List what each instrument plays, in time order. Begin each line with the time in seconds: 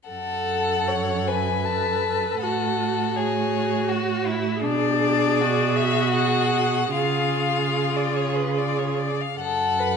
0.09 cello F#2, viola A4, violin A4 F#5
0.88 violin C#5
1.27 violin B4 G#5
1.65 viola A4, violin A5
2.40 cello A2, viola F#4, violin A4 F#5
3.16 viola F#4, violin G#4 C#5
3.89 violin F#4
4.26 violin E4
4.64 cello B2, violin D4 D5, viola G#4
5.40 violin F#4
5.76 violin E5
6.14 viola G#4, violin F#5
6.94 cello C#3, violin F4 F5, viola G#4
7.96 violin D5
8.16 violin C#5
8.36 violin B4
8.57 violin D5
8.79 violin C#5
8.99 violin D5
9.21 violin F5
9.39 cello F#2, viola A4, violin A4 F#5
9.79 violin B4